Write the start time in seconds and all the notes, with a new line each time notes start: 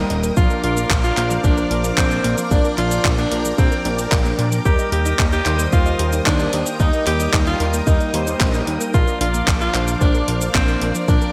Already playing: G3 A#3 D#4 A#4 G5 D#6
0.10 D#1 D#5, closed hi-hat
0.23 A#4, closed hi-hat, cabasa
0.37 A#1 F3 A#3 D4 F4 A#4 D5 F5 D6, kick, closed hi-hat, cabasa
0.50 A#4, closed hi-hat, cabasa
0.64 A#1 D4 F4, closed hi-hat
0.77 A#3, closed hi-hat, cabasa
0.90 A#1 A#3, kick, clap, closed hi-hat, cabasa
1.04 A#3 F4, closed hi-hat, cabasa
1.17 A#1 F3 A#3 D4 C5, clap, closed hi-hat
1.31 F3, closed hi-hat, cabasa
1.44 A#1 A#3 D4, kick, closed hi-hat, cabasa
1.57 A#4, closed hi-hat, cabasa
1.71 A#1 D4, closed hi-hat
1.84 A#3, closed hi-hat, cabasa
1.98 A#1 A#3 C4, kick, clap, closed hi-hat, cabasa
2.11 A#3, closed hi-hat, cabasa
2.24 A#1 A#3, closed hi-hat
2.38 F3, closed hi-hat, cabasa
2.51 A#1 F3 A#3 D4 D5 G5, kick, closed hi-hat, cabasa
2.65 A#4, closed hi-hat, cabasa
2.78 A#1 D4 F4, clap, closed hi-hat
2.91 A#3, closed hi-hat, cabasa
3.05 A#1 A#3, kick, clap, closed hi-hat, cabasa
3.18 A#3 D4, closed hi-hat, cabasa
3.32 A#1 F3 A#3 D4 A#4, closed hi-hat
3.45 F3, closed hi-hat, cabasa
3.58 A#1 A#3 C4, kick, closed hi-hat, cabasa
3.72 A#4, closed hi-hat, cabasa
3.85 A#1 D4, closed hi-hat
3.99 A#3, closed hi-hat, cabasa
4.12 A#1 A#3, kick, clap, closed hi-hat, cabasa
4.25 A#3, closed hi-hat, cabasa
4.39 A#2 A#3, closed hi-hat
4.52 F3, closed hi-hat, cabasa
4.65 D#2 G3 A#3 D#4 G4 A#4 G5 D#6, kick, closed hi-hat, cabasa
4.79 D#5, closed hi-hat, cabasa
4.92 D#2 G4, closed hi-hat
5.06 D#4, closed hi-hat, cabasa
5.19 D#2 D#4, kick, clap, closed hi-hat, cabasa
5.32 D#4 G4, closed hi-hat, cabasa
5.46 D#2 D#3 G3 A#3 D#4 C5, clap, closed hi-hat
5.59 A#3, closed hi-hat, cabasa
5.73 D#2 D#4 F4, kick, closed hi-hat, cabasa
5.86 D#5, closed hi-hat, cabasa
5.99 D#2 G4, closed hi-hat
6.13 D#4, closed hi-hat, cabasa
6.26 D#2 D4 D#4, kick, clap, closed hi-hat, cabasa
6.39 D#4, closed hi-hat, cabasa
6.53 D#2 D#4, closed hi-hat
6.66 A#3, closed hi-hat, cabasa
6.80 D#2 G3 A#3 D#4 D#5, kick, closed hi-hat, cabasa
6.93 D#5, closed hi-hat, cabasa
7.07 D#2 G4, clap, closed hi-hat
7.20 D#4, closed hi-hat, cabasa
7.33 D#2 D#4, kick, clap, closed hi-hat, cabasa
7.47 D#4 F4, closed hi-hat, cabasa
7.60 D#2 G3 A#3 D#4 A#4, closed hi-hat
7.74 A#3, closed hi-hat, cabasa
7.87 D#2 D#4, kick, closed hi-hat, cabasa
8.00 D#5, closed hi-hat, cabasa
8.14 D#2 G3 A#3 D#4 G4 C5, closed hi-hat
8.27 D#4, closed hi-hat, cabasa
8.41 A#1 D#4, kick, clap, closed hi-hat, cabasa
8.54 G3 A#3 D#4 A#4, closed hi-hat, cabasa
8.67 D#2 D#4, closed hi-hat
8.81 A#3, closed hi-hat, cabasa
8.94 A#1 F3 A#3 D4 F4 A#4 D5 F5 D6, kick, closed hi-hat, cabasa
9.08 A#4, closed hi-hat, cabasa
9.21 A#1 D4 F4, closed hi-hat
9.34 A#3, closed hi-hat, cabasa
9.48 A#1 A#3, kick, clap, closed hi-hat, cabasa
9.61 A#3 F4, closed hi-hat, cabasa
9.74 A#1 F3 A#3 D4 C5, clap, closed hi-hat
9.88 F3, closed hi-hat, cabasa
10.01 A#1 A#3 D4, kick, closed hi-hat, cabasa
10.15 A#4, closed hi-hat, cabasa
10.28 A#1 D4, closed hi-hat
10.41 A#3, closed hi-hat, cabasa
10.55 A#1 A#3 C4, kick, clap, closed hi-hat, cabasa
10.68 A#3, closed hi-hat, cabasa
10.81 A#1 A#3, closed hi-hat
10.95 F3, closed hi-hat, cabasa
11.08 A#1 F3 A#3 D4 D5 G5, kick, closed hi-hat, cabasa
11.22 A#4, closed hi-hat, cabasa